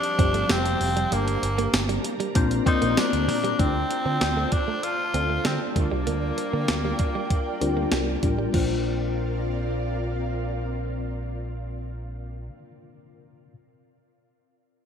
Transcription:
Already playing: tine electric piano F3 G3 A3 C4 G4, tenor saxophone D4, ambient pad G4 C5 F5 A5
0.03 closed hi-hat
0.19 picked electric bass G1, tine electric piano F3 G3 A3 C4 G4, clean electric guitar C4, kick, closed hi-hat
0.34 clean electric guitar A3, closed hi-hat
0.50 picked electric bass F1, clean electric guitar G3, tenor saxophone C4, snare, closed hi-hat, tambourine
0.65 muted clean electric guitar stroke, closed hi-hat
0.81 picked electric bass F1, open hi-hat
0.96 clean electric guitar G3, closed hi-hat
1.11 picked electric bass G1, clean electric guitar G3, tine electric piano A#3 D4 G4, tenor saxophone A#3, ambient pad A#4 D5 A#5, closed hi-hat
1.28 closed hi-hat
1.43 picked electric bass G1, muted clean electric guitar stroke, closed hi-hat
1.58 clean electric guitar A#3, closed hi-hat
1.74 picked electric bass G1, snare, closed hi-hat, tambourine
1.89 clean electric guitar G3, closed hi-hat
2.04 muted clean electric guitar stroke, closed hi-hat
2.20 clean electric guitar G3, closed hi-hat
2.35 picked electric bass A#1, tine electric piano A#3 C4 D4 F4 C5, ambient pad F4 C5, muted clean electric guitar stroke, kick, closed hi-hat
2.51 closed hi-hat
2.66 tine electric piano A#3 C4 F4 C5 D5, clean electric guitar C4, tenor saxophone D#4, kick, closed hi-hat
2.82 picked electric bass A#1, clean electric guitar A#3, closed hi-hat
2.97 clean electric guitar G3, tenor saxophone D4, muted picked electric bass stroke, snare, closed hi-hat, tambourine
3.13 picked electric bass D2, muted clean electric guitar stroke, closed hi-hat
3.28 picked electric bass A#2, open hi-hat
3.44 clean electric guitar G3, closed hi-hat
3.59 picked electric bass D2, tine electric piano A3 D4 E4 C5, tenor saxophone C4, clean electric guitar D4, ambient pad F4 C5 D5 A5, kick, closed hi-hat
3.66 tine electric piano F4
3.90 muted clean electric guitar stroke, closed hi-hat
4.06 picked electric bass D3, clean electric guitar C4
4.21 picked electric bass D2, snare, closed hi-hat
4.37 clean electric guitar A3
4.52 tenor saxophone D4, muted clean electric guitar stroke, kick, closed hi-hat
4.68 clean electric guitar A3
4.83 tenor saxophone F4, muted clean electric guitar stroke, closed hi-hat
5.14 picked electric bass D2, tine electric piano A3 D4 F4 A4, clean electric guitar C4, closed hi-hat
5.30 clean electric guitar A3
5.45 picked electric bass D3, clean electric guitar G3, tenor saxophone C4, snare, closed hi-hat
5.61 muted clean electric guitar stroke
5.75 picked electric bass D2, tine electric piano G3 D4 F4 A#4, tenor saxophone A#3, ambient pad A#4 G5, kick, closed hi-hat
5.91 picked electric bass C2, clean electric guitar G3
6.07 picked electric bass D2, clean electric guitar A#3, closed hi-hat
6.38 muted clean electric guitar stroke, closed hi-hat
6.53 picked electric bass D3, clean electric guitar A#3
6.68 picked electric bass D2, snare, closed hi-hat
6.84 clean electric guitar G3
6.99 muted clean electric guitar stroke, kick, closed hi-hat
7.15 clean electric guitar G3
7.30 muted clean electric guitar stroke, kick, closed hi-hat
7.61 picked electric bass D2, tine electric piano G3 D4 F4 A#4, clean electric guitar C4, closed hi-hat
7.77 clean electric guitar A#3
7.92 picked electric bass C2, clean electric guitar G3, snare, closed hi-hat
8.08 muted clean electric guitar stroke
8.23 picked electric bass A1, tine electric piano G3 D4 F4 A#4, kick, closed hi-hat
8.39 clean electric guitar G3
8.52 picked electric bass A#1, clean electric guitar F3, tine electric piano A#3 D4 F4, ambient pad C4 F4 A#4 D5 F5, kick, crash
8.56 tine electric piano C5

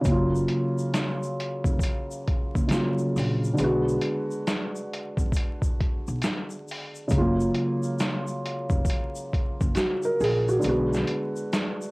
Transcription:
0.01 felt piano C#3 F#3, kick, shaker
0.06 upright bass F#1, felt piano A#3, closed hi-hat
0.11 felt piano F4
0.35 shaker
0.48 closed hi-hat
0.78 shaker
0.94 snare, closed hi-hat, shaker
1.23 shaker
1.40 closed hi-hat
1.64 upright bass F1, kick, shaker
1.79 kick, shaker
1.83 closed hi-hat
2.11 shaker
2.27 kick, closed hi-hat
2.55 upright bass F#1, kick, shaker
2.68 felt piano C#3 F#3 A#3, snare, closed hi-hat, shaker
2.73 felt piano F4
2.98 shaker
3.16 upright bass A#1, open hi-hat, shaker
3.44 shaker
3.54 felt piano D3 G#3
3.58 upright bass B1, felt piano B3, closed hi-hat, shaker
3.64 felt piano F#4
3.89 shaker
4.01 closed hi-hat
4.31 shaker
4.47 snare, closed hi-hat, shaker
4.76 shaker
4.93 closed hi-hat
5.17 upright bass G#1, kick, shaker
5.32 kick, shaker
5.37 closed hi-hat
5.62 kick, shaker
5.81 kick, closed hi-hat
6.07 upright bass B1, shaker
6.22 snare, closed hi-hat, shaker
6.50 shaker
6.68 open hi-hat, shaker
6.95 shaker
7.08 upright bass F#1, felt piano C#3 F#3, kick, closed hi-hat, shaker
7.14 felt piano G#3 F4
7.21 felt piano A#3
7.40 shaker
7.54 closed hi-hat
7.83 shaker
7.99 snare, closed hi-hat, shaker
8.27 shaker
8.46 closed hi-hat
8.70 upright bass F1, kick, shaker
8.85 kick, shaker
8.90 closed hi-hat
9.16 shaker
9.33 kick, closed hi-hat
9.61 upright bass F#1, kick, shaker
9.75 felt piano F#4, snare, closed hi-hat, shaker
10.02 felt piano A#4, shaker
10.20 upright bass A#1, felt piano G#4, open hi-hat, shaker
10.49 felt piano F#4, shaker
10.59 felt piano D3 G#3, shaker
10.64 upright bass B1, felt piano B3, closed hi-hat
10.69 felt piano F#4
10.93 snare, shaker
11.07 closed hi-hat
11.36 shaker
11.53 snare, closed hi-hat, shaker
11.81 shaker

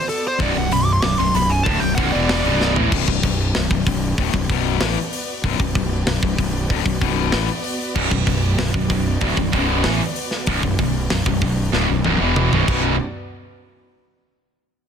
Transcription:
Already playing: string section B3 F#4 B4 D5
0.09 lead electric guitar A4, open hi-hat
0.28 lead electric guitar C5
0.39 fingered electric bass B0, distorted electric guitar B1 F#2, lead electric guitar D5, kick, open hi-hat
0.56 fingered electric bass B0, distorted electric guitar B1 F#2, lead electric guitar F#5
0.71 fingered electric bass B0, distorted electric guitar B1 F#2, lead electric guitar B5, open hi-hat
0.85 lead electric guitar D6
0.93 lead electric guitar C6
1.02 fingered electric bass B0, distorted electric guitar B1 F#2, lead electric guitar D6, snare, open hi-hat
1.19 fingered electric bass B0, distorted electric guitar B1 F#2, lead electric guitar C6
1.34 fingered electric bass B0, distorted electric guitar B1 F#2, lead electric guitar B5, open hi-hat
1.50 lead electric guitar G#5
1.63 fingered electric bass D1, distorted electric guitar D2 A2, lead electric guitar A5, kick, open hi-hat
1.80 fingered electric bass B0, distorted electric guitar B1 F#2, lead electric guitar G5
1.95 fingered electric bass B0, distorted electric guitar B1 F#2, lead electric guitar F#5, kick, open hi-hat
2.12 fingered electric bass E1, distorted electric guitar E2 B2 E3, lead electric guitar D5
2.29 snare, open hi-hat
2.43 fingered electric bass B0, distorted electric guitar B1 F#2 B2
2.61 snare
2.76 fingered electric bass A1, distorted electric guitar A2 E3, floor tom
2.92 fingered electric bass B0, distorted electric guitar B1 F#2, string section B3 F#4 B4 D5, kick, crash
3.08 fingered electric bass B0, distorted electric guitar B1 F#2, kick
3.23 fingered electric bass B0, distorted electric guitar B1 F#2, kick, open hi-hat
3.55 fingered electric bass B0, distorted electric guitar B1 F#2, snare, open hi-hat
3.71 fingered electric bass B0, distorted electric guitar B1 F#2, kick
3.87 fingered electric bass B0, distorted electric guitar B1 F#2, kick, open hi-hat
4.18 fingered electric bass D1, distorted electric guitar D2 A2, kick, open hi-hat
4.34 fingered electric bass B0, distorted electric guitar B1 F#2, kick
4.49 fingered electric bass B0, distorted electric guitar B1 F#2 B2, kick, open hi-hat
4.81 fingered electric bass A1, distorted electric guitar A2 E3, snare, open hi-hat
5.13 open hi-hat
5.44 fingered electric bass B0, distorted electric guitar B1 F#2, kick, open hi-hat
5.59 fingered electric bass B0, distorted electric guitar B1 F#2, kick
5.75 fingered electric bass B0, distorted electric guitar B1 F#2, kick, open hi-hat
6.07 fingered electric bass B0, distorted electric guitar B1 F#2, snare, open hi-hat
6.22 fingered electric bass B0, distorted electric guitar B1 F#2, kick
6.38 fingered electric bass B0, distorted electric guitar B1 F#2, kick, open hi-hat
6.70 fingered electric bass D1, distorted electric guitar D2 A2, kick, open hi-hat
6.85 fingered electric bass B0, distorted electric guitar B1 F#2, kick
7.01 fingered electric bass B0, distorted electric guitar B1 F#2 B2, kick, open hi-hat
7.32 fingered electric bass A1, distorted electric guitar A2 E3, snare, open hi-hat
7.64 open hi-hat
7.96 fingered electric bass B0, distorted electric guitar B1 F#2, kick, crash
8.11 fingered electric bass B0, distorted electric guitar B1 F#2, kick
8.26 fingered electric bass B0, distorted electric guitar B1 F#2, kick, open hi-hat
8.58 fingered electric bass B0, distorted electric guitar B1 F#2, snare, open hi-hat
8.74 fingered electric bass B0, distorted electric guitar B1 F#2, kick
8.90 fingered electric bass B0, distorted electric guitar B1 F#2, kick, open hi-hat
9.21 fingered electric bass D1, distorted electric guitar D2 A2, kick, open hi-hat
9.37 fingered electric bass B0, distorted electric guitar B1 F#2, kick
9.53 fingered electric bass B0, distorted electric guitar B1 F#2 B2, kick, open hi-hat
9.84 fingered electric bass A1, distorted electric guitar A2 E3, snare, open hi-hat
10.16 open hi-hat
10.31 snare
10.46 fingered electric bass B0, distorted electric guitar B1 F#2, kick, open hi-hat
10.63 fingered electric bass B0, distorted electric guitar B1 F#2, kick
10.79 fingered electric bass B0, distorted electric guitar B1 F#2, kick, open hi-hat
11.10 fingered electric bass B0, distorted electric guitar B1 F#2, snare, open hi-hat
11.26 fingered electric bass B0, distorted electric guitar B1 F#2, kick
11.41 fingered electric bass B0, distorted electric guitar B1 F#2, kick, open hi-hat
11.73 fingered electric bass D1, distorted electric guitar D2 A2, snare
11.89 fingered electric bass B0, distorted electric guitar B1 F#2
12.04 fingered electric bass B0, distorted electric guitar B1 F#2, high tom
12.20 fingered electric bass E1, distorted electric guitar E2 B2 E3
12.36 mid tom
12.53 fingered electric bass B0, distorted electric guitar B1 F#2 B2, mid tom
12.68 fingered electric bass B0, distorted electric guitar B1 F#2 B2, string section B3 F#4 B4 D5, kick, crash

